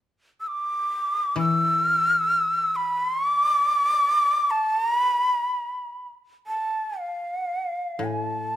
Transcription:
0, 0, Header, 1, 3, 480
1, 0, Start_track
1, 0, Tempo, 500000
1, 8220, End_track
2, 0, Start_track
2, 0, Title_t, "Shakuhachi"
2, 0, Program_c, 0, 77
2, 388, Note_on_c, 0, 88, 56
2, 455, Note_on_c, 0, 86, 82
2, 469, Note_off_c, 0, 88, 0
2, 1328, Note_off_c, 0, 86, 0
2, 1335, Note_on_c, 0, 88, 101
2, 2648, Note_on_c, 0, 83, 110
2, 2662, Note_off_c, 0, 88, 0
2, 2917, Note_off_c, 0, 83, 0
2, 2917, Note_on_c, 0, 84, 110
2, 3041, Note_off_c, 0, 84, 0
2, 3041, Note_on_c, 0, 85, 110
2, 3166, Note_off_c, 0, 85, 0
2, 3166, Note_on_c, 0, 86, 110
2, 4326, Note_on_c, 0, 81, 111
2, 4340, Note_off_c, 0, 86, 0
2, 4595, Note_off_c, 0, 81, 0
2, 4595, Note_on_c, 0, 82, 111
2, 4777, Note_off_c, 0, 82, 0
2, 4777, Note_on_c, 0, 83, 111
2, 5837, Note_off_c, 0, 83, 0
2, 6211, Note_on_c, 0, 81, 71
2, 6712, Note_on_c, 0, 77, 71
2, 6727, Note_off_c, 0, 81, 0
2, 7719, Note_on_c, 0, 80, 83
2, 7734, Note_off_c, 0, 77, 0
2, 7835, Note_off_c, 0, 80, 0
2, 7835, Note_on_c, 0, 81, 83
2, 8220, Note_off_c, 0, 81, 0
2, 8220, End_track
3, 0, Start_track
3, 0, Title_t, "Koto"
3, 0, Program_c, 1, 107
3, 1303, Note_on_c, 1, 52, 57
3, 4060, Note_off_c, 1, 52, 0
3, 7671, Note_on_c, 1, 45, 51
3, 8220, Note_off_c, 1, 45, 0
3, 8220, End_track
0, 0, End_of_file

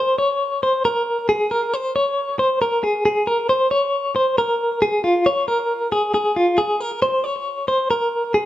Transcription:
0, 0, Header, 1, 2, 480
1, 0, Start_track
1, 0, Key_signature, -5, "major"
1, 0, Tempo, 441176
1, 1405, Time_signature, 4, 2, 24, 8
1, 9199, End_track
2, 0, Start_track
2, 0, Title_t, "Clean electric guitar"
2, 0, Program_c, 0, 27
2, 0, Note_on_c, 0, 72, 67
2, 197, Note_off_c, 0, 72, 0
2, 201, Note_on_c, 0, 73, 66
2, 654, Note_off_c, 0, 73, 0
2, 686, Note_on_c, 0, 72, 58
2, 921, Note_off_c, 0, 72, 0
2, 925, Note_on_c, 0, 70, 66
2, 1376, Note_off_c, 0, 70, 0
2, 1402, Note_on_c, 0, 68, 82
2, 1643, Note_off_c, 0, 68, 0
2, 1645, Note_on_c, 0, 70, 72
2, 1888, Note_off_c, 0, 70, 0
2, 1888, Note_on_c, 0, 72, 69
2, 2125, Note_off_c, 0, 72, 0
2, 2129, Note_on_c, 0, 73, 64
2, 2578, Note_off_c, 0, 73, 0
2, 2603, Note_on_c, 0, 72, 67
2, 2841, Note_off_c, 0, 72, 0
2, 2846, Note_on_c, 0, 70, 63
2, 3085, Note_off_c, 0, 70, 0
2, 3085, Note_on_c, 0, 68, 61
2, 3310, Note_off_c, 0, 68, 0
2, 3323, Note_on_c, 0, 68, 80
2, 3561, Note_on_c, 0, 70, 72
2, 3564, Note_off_c, 0, 68, 0
2, 3796, Note_off_c, 0, 70, 0
2, 3801, Note_on_c, 0, 72, 72
2, 4033, Note_off_c, 0, 72, 0
2, 4038, Note_on_c, 0, 73, 70
2, 4492, Note_off_c, 0, 73, 0
2, 4523, Note_on_c, 0, 72, 65
2, 4763, Note_off_c, 0, 72, 0
2, 4768, Note_on_c, 0, 70, 68
2, 5217, Note_off_c, 0, 70, 0
2, 5244, Note_on_c, 0, 68, 88
2, 5479, Note_off_c, 0, 68, 0
2, 5483, Note_on_c, 0, 65, 76
2, 5724, Note_off_c, 0, 65, 0
2, 5724, Note_on_c, 0, 73, 74
2, 5958, Note_off_c, 0, 73, 0
2, 5963, Note_on_c, 0, 70, 68
2, 6414, Note_off_c, 0, 70, 0
2, 6443, Note_on_c, 0, 68, 73
2, 6670, Note_off_c, 0, 68, 0
2, 6683, Note_on_c, 0, 68, 65
2, 6923, Note_off_c, 0, 68, 0
2, 6924, Note_on_c, 0, 65, 62
2, 7158, Note_on_c, 0, 68, 81
2, 7164, Note_off_c, 0, 65, 0
2, 7404, Note_off_c, 0, 68, 0
2, 7404, Note_on_c, 0, 70, 75
2, 7637, Note_off_c, 0, 70, 0
2, 7641, Note_on_c, 0, 72, 74
2, 7876, Note_off_c, 0, 72, 0
2, 7876, Note_on_c, 0, 73, 74
2, 8331, Note_off_c, 0, 73, 0
2, 8357, Note_on_c, 0, 72, 61
2, 8596, Note_off_c, 0, 72, 0
2, 8601, Note_on_c, 0, 70, 67
2, 9053, Note_off_c, 0, 70, 0
2, 9077, Note_on_c, 0, 68, 80
2, 9199, Note_off_c, 0, 68, 0
2, 9199, End_track
0, 0, End_of_file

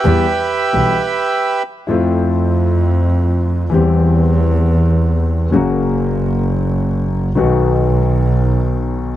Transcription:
0, 0, Header, 1, 4, 480
1, 0, Start_track
1, 0, Tempo, 500000
1, 8798, End_track
2, 0, Start_track
2, 0, Title_t, "Bandoneon"
2, 0, Program_c, 0, 23
2, 0, Note_on_c, 0, 67, 50
2, 0, Note_on_c, 0, 71, 52
2, 0, Note_on_c, 0, 76, 77
2, 1560, Note_off_c, 0, 71, 0
2, 1561, Note_off_c, 0, 67, 0
2, 1563, Note_off_c, 0, 76, 0
2, 8798, End_track
3, 0, Start_track
3, 0, Title_t, "Grand piano"
3, 0, Program_c, 1, 0
3, 38, Note_on_c, 1, 59, 52
3, 40, Note_on_c, 1, 55, 55
3, 42, Note_on_c, 1, 52, 74
3, 46, Note_on_c, 1, 40, 70
3, 46, Note_on_c, 1, 67, 67
3, 223, Note_off_c, 1, 59, 0
3, 224, Note_off_c, 1, 55, 0
3, 226, Note_off_c, 1, 52, 0
3, 227, Note_off_c, 1, 67, 0
3, 228, Note_off_c, 1, 40, 0
3, 699, Note_on_c, 1, 52, 37
3, 704, Note_on_c, 1, 55, 33
3, 704, Note_on_c, 1, 59, 35
3, 704, Note_on_c, 1, 67, 43
3, 707, Note_on_c, 1, 35, 45
3, 707, Note_on_c, 1, 47, 46
3, 887, Note_off_c, 1, 52, 0
3, 889, Note_off_c, 1, 55, 0
3, 889, Note_off_c, 1, 59, 0
3, 889, Note_off_c, 1, 67, 0
3, 891, Note_off_c, 1, 35, 0
3, 891, Note_off_c, 1, 47, 0
3, 1796, Note_on_c, 1, 64, 52
3, 1807, Note_on_c, 1, 41, 60
3, 1808, Note_on_c, 1, 57, 45
3, 1812, Note_on_c, 1, 53, 61
3, 1817, Note_on_c, 1, 60, 49
3, 1832, Note_on_c, 1, 65, 57
3, 3480, Note_off_c, 1, 64, 0
3, 3486, Note_off_c, 1, 41, 0
3, 3486, Note_off_c, 1, 57, 0
3, 3488, Note_off_c, 1, 53, 0
3, 3491, Note_off_c, 1, 60, 0
3, 3498, Note_off_c, 1, 65, 0
3, 3549, Note_on_c, 1, 52, 62
3, 3566, Note_on_c, 1, 55, 49
3, 3575, Note_on_c, 1, 40, 61
3, 3580, Note_on_c, 1, 60, 49
3, 3590, Note_on_c, 1, 67, 60
3, 5229, Note_off_c, 1, 55, 0
3, 5230, Note_off_c, 1, 52, 0
3, 5234, Note_off_c, 1, 40, 0
3, 5236, Note_off_c, 1, 60, 0
3, 5241, Note_off_c, 1, 67, 0
3, 5293, Note_on_c, 1, 49, 57
3, 5302, Note_on_c, 1, 54, 67
3, 5311, Note_on_c, 1, 42, 65
3, 5314, Note_on_c, 1, 58, 55
3, 5327, Note_on_c, 1, 66, 60
3, 6973, Note_off_c, 1, 49, 0
3, 6981, Note_off_c, 1, 54, 0
3, 6982, Note_off_c, 1, 42, 0
3, 6984, Note_off_c, 1, 58, 0
3, 6990, Note_off_c, 1, 66, 0
3, 7060, Note_on_c, 1, 51, 56
3, 7066, Note_on_c, 1, 54, 48
3, 7075, Note_on_c, 1, 35, 64
3, 7076, Note_on_c, 1, 47, 65
3, 7080, Note_on_c, 1, 59, 47
3, 7090, Note_on_c, 1, 66, 59
3, 8761, Note_off_c, 1, 51, 0
3, 8764, Note_off_c, 1, 54, 0
3, 8769, Note_off_c, 1, 35, 0
3, 8769, Note_off_c, 1, 47, 0
3, 8771, Note_off_c, 1, 59, 0
3, 8776, Note_off_c, 1, 66, 0
3, 8798, End_track
4, 0, Start_track
4, 0, Title_t, "Double bass"
4, 0, Program_c, 2, 43
4, 46, Note_on_c, 2, 40, 81
4, 227, Note_off_c, 2, 40, 0
4, 711, Note_on_c, 2, 35, 50
4, 893, Note_off_c, 2, 35, 0
4, 1818, Note_on_c, 2, 41, 67
4, 3491, Note_off_c, 2, 41, 0
4, 3573, Note_on_c, 2, 40, 80
4, 5233, Note_off_c, 2, 40, 0
4, 5317, Note_on_c, 2, 30, 77
4, 6985, Note_off_c, 2, 30, 0
4, 7080, Note_on_c, 2, 35, 79
4, 8771, Note_off_c, 2, 35, 0
4, 8798, End_track
0, 0, End_of_file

